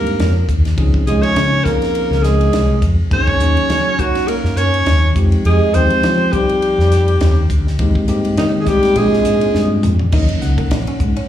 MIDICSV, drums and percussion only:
0, 0, Header, 1, 2, 480
1, 0, Start_track
1, 0, Tempo, 584226
1, 639, Time_signature, 4, 2, 24, 8
1, 9271, End_track
2, 0, Start_track
2, 0, Title_t, "Drums"
2, 54, Note_on_c, 9, 51, 53
2, 136, Note_off_c, 9, 51, 0
2, 160, Note_on_c, 9, 51, 65
2, 166, Note_on_c, 9, 38, 91
2, 243, Note_off_c, 9, 51, 0
2, 248, Note_off_c, 9, 38, 0
2, 400, Note_on_c, 9, 36, 66
2, 402, Note_on_c, 9, 44, 69
2, 402, Note_on_c, 9, 51, 50
2, 482, Note_off_c, 9, 36, 0
2, 484, Note_off_c, 9, 44, 0
2, 484, Note_off_c, 9, 51, 0
2, 535, Note_on_c, 9, 51, 51
2, 541, Note_on_c, 9, 38, 26
2, 617, Note_off_c, 9, 51, 0
2, 623, Note_off_c, 9, 38, 0
2, 638, Note_on_c, 9, 51, 67
2, 639, Note_on_c, 9, 36, 87
2, 720, Note_off_c, 9, 51, 0
2, 721, Note_off_c, 9, 36, 0
2, 772, Note_on_c, 9, 36, 76
2, 854, Note_off_c, 9, 36, 0
2, 881, Note_on_c, 9, 44, 76
2, 881, Note_on_c, 9, 51, 52
2, 963, Note_off_c, 9, 44, 0
2, 963, Note_off_c, 9, 51, 0
2, 1013, Note_on_c, 9, 51, 52
2, 1095, Note_off_c, 9, 51, 0
2, 1118, Note_on_c, 9, 51, 67
2, 1124, Note_on_c, 9, 38, 97
2, 1201, Note_off_c, 9, 51, 0
2, 1206, Note_off_c, 9, 38, 0
2, 1360, Note_on_c, 9, 36, 70
2, 1363, Note_on_c, 9, 44, 75
2, 1363, Note_on_c, 9, 51, 50
2, 1369, Note_on_c, 9, 38, 30
2, 1442, Note_off_c, 9, 36, 0
2, 1445, Note_off_c, 9, 44, 0
2, 1445, Note_off_c, 9, 51, 0
2, 1451, Note_off_c, 9, 38, 0
2, 1494, Note_on_c, 9, 51, 53
2, 1500, Note_on_c, 9, 38, 26
2, 1576, Note_off_c, 9, 51, 0
2, 1582, Note_off_c, 9, 38, 0
2, 1602, Note_on_c, 9, 51, 73
2, 1684, Note_off_c, 9, 51, 0
2, 1741, Note_on_c, 9, 38, 27
2, 1824, Note_off_c, 9, 38, 0
2, 1843, Note_on_c, 9, 44, 73
2, 1843, Note_on_c, 9, 51, 55
2, 1849, Note_on_c, 9, 38, 31
2, 1925, Note_off_c, 9, 44, 0
2, 1925, Note_off_c, 9, 51, 0
2, 1931, Note_off_c, 9, 38, 0
2, 1978, Note_on_c, 9, 51, 51
2, 2060, Note_off_c, 9, 51, 0
2, 2079, Note_on_c, 9, 51, 74
2, 2085, Note_on_c, 9, 38, 92
2, 2161, Note_off_c, 9, 51, 0
2, 2167, Note_off_c, 9, 38, 0
2, 2318, Note_on_c, 9, 36, 70
2, 2318, Note_on_c, 9, 44, 73
2, 2318, Note_on_c, 9, 51, 55
2, 2400, Note_off_c, 9, 36, 0
2, 2400, Note_off_c, 9, 44, 0
2, 2400, Note_off_c, 9, 51, 0
2, 2558, Note_on_c, 9, 36, 91
2, 2560, Note_on_c, 9, 51, 73
2, 2640, Note_off_c, 9, 36, 0
2, 2642, Note_off_c, 9, 51, 0
2, 2691, Note_on_c, 9, 36, 75
2, 2773, Note_off_c, 9, 36, 0
2, 2795, Note_on_c, 9, 44, 72
2, 2795, Note_on_c, 9, 51, 55
2, 2878, Note_off_c, 9, 44, 0
2, 2878, Note_off_c, 9, 51, 0
2, 2932, Note_on_c, 9, 51, 59
2, 3014, Note_off_c, 9, 51, 0
2, 3036, Note_on_c, 9, 51, 75
2, 3042, Note_on_c, 9, 38, 94
2, 3119, Note_off_c, 9, 51, 0
2, 3124, Note_off_c, 9, 38, 0
2, 3277, Note_on_c, 9, 36, 65
2, 3279, Note_on_c, 9, 44, 70
2, 3279, Note_on_c, 9, 51, 54
2, 3359, Note_off_c, 9, 36, 0
2, 3361, Note_off_c, 9, 44, 0
2, 3361, Note_off_c, 9, 51, 0
2, 3412, Note_on_c, 9, 51, 55
2, 3417, Note_on_c, 9, 38, 27
2, 3494, Note_off_c, 9, 51, 0
2, 3500, Note_off_c, 9, 38, 0
2, 3518, Note_on_c, 9, 51, 83
2, 3600, Note_off_c, 9, 51, 0
2, 3655, Note_on_c, 9, 38, 30
2, 3737, Note_off_c, 9, 38, 0
2, 3755, Note_on_c, 9, 44, 77
2, 3755, Note_on_c, 9, 51, 58
2, 3837, Note_off_c, 9, 44, 0
2, 3837, Note_off_c, 9, 51, 0
2, 3893, Note_on_c, 9, 51, 55
2, 3975, Note_off_c, 9, 51, 0
2, 3995, Note_on_c, 9, 51, 69
2, 4000, Note_on_c, 9, 38, 97
2, 4077, Note_off_c, 9, 51, 0
2, 4083, Note_off_c, 9, 38, 0
2, 4238, Note_on_c, 9, 36, 92
2, 4239, Note_on_c, 9, 44, 76
2, 4239, Note_on_c, 9, 51, 52
2, 4320, Note_off_c, 9, 36, 0
2, 4321, Note_off_c, 9, 44, 0
2, 4321, Note_off_c, 9, 51, 0
2, 4371, Note_on_c, 9, 51, 53
2, 4453, Note_off_c, 9, 51, 0
2, 4478, Note_on_c, 9, 51, 70
2, 4560, Note_off_c, 9, 51, 0
2, 4716, Note_on_c, 9, 44, 70
2, 4716, Note_on_c, 9, 51, 53
2, 4798, Note_off_c, 9, 44, 0
2, 4798, Note_off_c, 9, 51, 0
2, 4850, Note_on_c, 9, 51, 52
2, 4932, Note_off_c, 9, 51, 0
2, 4957, Note_on_c, 9, 51, 68
2, 4962, Note_on_c, 9, 38, 98
2, 5039, Note_off_c, 9, 51, 0
2, 5045, Note_off_c, 9, 38, 0
2, 5199, Note_on_c, 9, 36, 68
2, 5200, Note_on_c, 9, 44, 70
2, 5200, Note_on_c, 9, 51, 55
2, 5281, Note_off_c, 9, 36, 0
2, 5282, Note_off_c, 9, 44, 0
2, 5282, Note_off_c, 9, 51, 0
2, 5335, Note_on_c, 9, 51, 49
2, 5417, Note_off_c, 9, 51, 0
2, 5442, Note_on_c, 9, 51, 71
2, 5524, Note_off_c, 9, 51, 0
2, 5582, Note_on_c, 9, 38, 31
2, 5664, Note_off_c, 9, 38, 0
2, 5683, Note_on_c, 9, 44, 74
2, 5683, Note_on_c, 9, 51, 56
2, 5688, Note_on_c, 9, 38, 29
2, 5765, Note_off_c, 9, 44, 0
2, 5765, Note_off_c, 9, 51, 0
2, 5771, Note_off_c, 9, 38, 0
2, 5816, Note_on_c, 9, 51, 51
2, 5898, Note_off_c, 9, 51, 0
2, 5920, Note_on_c, 9, 51, 73
2, 5926, Note_on_c, 9, 38, 103
2, 6002, Note_off_c, 9, 51, 0
2, 6008, Note_off_c, 9, 38, 0
2, 6161, Note_on_c, 9, 36, 67
2, 6161, Note_on_c, 9, 44, 71
2, 6161, Note_on_c, 9, 51, 52
2, 6243, Note_off_c, 9, 36, 0
2, 6243, Note_off_c, 9, 44, 0
2, 6243, Note_off_c, 9, 51, 0
2, 6302, Note_on_c, 9, 38, 26
2, 6384, Note_off_c, 9, 38, 0
2, 6399, Note_on_c, 9, 51, 73
2, 6401, Note_on_c, 9, 36, 99
2, 6481, Note_off_c, 9, 51, 0
2, 6483, Note_off_c, 9, 36, 0
2, 6535, Note_on_c, 9, 36, 74
2, 6617, Note_off_c, 9, 36, 0
2, 6637, Note_on_c, 9, 44, 69
2, 6637, Note_on_c, 9, 51, 57
2, 6719, Note_off_c, 9, 44, 0
2, 6719, Note_off_c, 9, 51, 0
2, 6775, Note_on_c, 9, 51, 59
2, 6857, Note_off_c, 9, 51, 0
2, 6880, Note_on_c, 9, 51, 75
2, 6885, Note_on_c, 9, 38, 102
2, 6962, Note_off_c, 9, 51, 0
2, 6967, Note_off_c, 9, 38, 0
2, 7118, Note_on_c, 9, 44, 75
2, 7118, Note_on_c, 9, 51, 59
2, 7120, Note_on_c, 9, 36, 69
2, 7124, Note_on_c, 9, 38, 29
2, 7201, Note_off_c, 9, 44, 0
2, 7201, Note_off_c, 9, 51, 0
2, 7203, Note_off_c, 9, 36, 0
2, 7206, Note_off_c, 9, 38, 0
2, 7252, Note_on_c, 9, 51, 56
2, 7257, Note_on_c, 9, 38, 29
2, 7334, Note_off_c, 9, 51, 0
2, 7340, Note_off_c, 9, 38, 0
2, 7358, Note_on_c, 9, 51, 82
2, 7440, Note_off_c, 9, 51, 0
2, 7501, Note_on_c, 9, 38, 29
2, 7583, Note_off_c, 9, 38, 0
2, 7599, Note_on_c, 9, 44, 78
2, 7599, Note_on_c, 9, 51, 59
2, 7605, Note_on_c, 9, 38, 28
2, 7681, Note_off_c, 9, 44, 0
2, 7681, Note_off_c, 9, 51, 0
2, 7687, Note_off_c, 9, 38, 0
2, 7733, Note_on_c, 9, 51, 62
2, 7815, Note_off_c, 9, 51, 0
2, 7842, Note_on_c, 9, 38, 52
2, 7925, Note_off_c, 9, 38, 0
2, 8078, Note_on_c, 9, 44, 73
2, 8078, Note_on_c, 9, 45, 75
2, 8160, Note_off_c, 9, 44, 0
2, 8160, Note_off_c, 9, 45, 0
2, 8211, Note_on_c, 9, 43, 68
2, 8293, Note_off_c, 9, 43, 0
2, 8317, Note_on_c, 9, 49, 90
2, 8320, Note_on_c, 9, 36, 99
2, 8399, Note_off_c, 9, 49, 0
2, 8402, Note_off_c, 9, 36, 0
2, 8451, Note_on_c, 9, 51, 54
2, 8534, Note_off_c, 9, 51, 0
2, 8559, Note_on_c, 9, 44, 70
2, 8565, Note_on_c, 9, 38, 28
2, 8642, Note_off_c, 9, 44, 0
2, 8647, Note_off_c, 9, 38, 0
2, 8691, Note_on_c, 9, 51, 55
2, 8692, Note_on_c, 9, 36, 74
2, 8773, Note_off_c, 9, 51, 0
2, 8774, Note_off_c, 9, 36, 0
2, 8798, Note_on_c, 9, 51, 74
2, 8804, Note_on_c, 9, 38, 103
2, 8880, Note_off_c, 9, 51, 0
2, 8886, Note_off_c, 9, 38, 0
2, 8933, Note_on_c, 9, 51, 55
2, 9015, Note_off_c, 9, 51, 0
2, 9036, Note_on_c, 9, 44, 77
2, 9038, Note_on_c, 9, 36, 75
2, 9118, Note_off_c, 9, 44, 0
2, 9120, Note_off_c, 9, 36, 0
2, 9173, Note_on_c, 9, 51, 54
2, 9255, Note_off_c, 9, 51, 0
2, 9271, End_track
0, 0, End_of_file